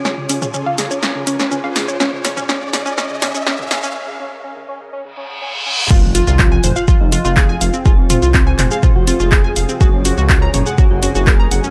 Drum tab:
CC |----------------|----------------|----------------|x---------------|
HH |--o---o---o---o-|--o---o---o---o-|----------------|--o---o---o---o-|
SH |x-xxx-xxx-xxx-xx|x-xxx-xxx-xxx-xx|----------------|x-xxx-xxx-xxx-xx|
CP |----------------|----------------|----------------|----x-------x---|
SD |o-----o-o--o--o-|o-o-o-o-o-o-o-o-|----------------|----------------|
T2 |---o------------|---o---------o--|----------------|------o---------|
BD |----------------|----------------|----------------|o---o---o---o---|

CC |----------------|----------------|
HH |--o---o---o---o-|--o---o---o---o-|
SH |x-xxx-xxx-xxx-xx|x-xxx-xxx-xxx-xx|
CP |----x-x-----x---|----x-------x---|
SD |----------------|----------------|
T2 |--o---o-o-------|------o---------|
BD |o---o---o---o---|o---o---o---o---|